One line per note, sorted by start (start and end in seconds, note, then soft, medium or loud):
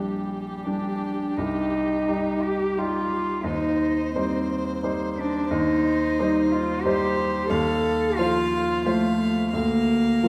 0.00 1.41 A#1 soft
0.00 0.61 G3 soft
0.00 0.66 G3 medium
0.00 0.62 D4 soft
0.00 0.62 G4 soft
0.00 3.40 G4 soft
0.65 1.35 G3 soft
0.65 1.39 D4 medium
0.65 1.35 D4 soft
0.65 1.36 G4 soft
1.37 2.06 C2 soft
1.37 2.44 D#4 medium
2.08 2.73 G3 soft
2.08 2.73 D#4 soft
2.08 2.74 G4 soft
2.43 2.79 G4 medium
2.77 3.41 G3 soft
2.77 3.41 D#4 soft
2.77 3.45 F4 medium
2.77 3.41 G4 soft
3.44 4.12 D#2 medium
3.44 4.14 D#4 medium
3.44 5.47 C5 medium
4.15 4.79 G3 soft
4.15 4.81 C4 medium
4.15 4.79 D#4 soft
4.15 4.79 C5 soft
4.83 5.47 G3 soft
4.83 5.47 D#4 soft
4.83 5.47 C5 medium
5.16 5.52 D4 medium
5.50 6.16 D#2 medium
5.50 6.53 D#4 medium
5.50 6.79 C5 medium
6.19 6.81 G3 soft
6.19 6.80 D#4 soft
6.19 6.81 C5 medium
6.51 6.84 F4 medium
6.82 7.47 G3 medium
6.82 7.47 D#4 medium
6.82 7.48 G4 loud
6.82 7.52 C5 medium
6.86 7.47 C5 medium
7.49 8.16 D#2 medium
7.49 8.19 A4 loud
7.49 8.17 F5 medium
8.17 8.82 F3 soft
8.17 8.87 F4 medium
8.17 8.82 F4 soft
8.17 8.82 C5 medium
8.17 8.84 F5 medium
8.85 9.49 F3 soft
8.85 9.53 A3 medium
8.85 9.50 F4 soft
8.85 9.50 C5 medium
8.85 9.52 F5 medium
9.53 10.22 D2 medium
9.53 10.28 A#3 loud
9.53 10.28 F5 medium
10.23 10.28 F3 soft
10.23 10.28 F4 soft
10.23 10.28 A#4 soft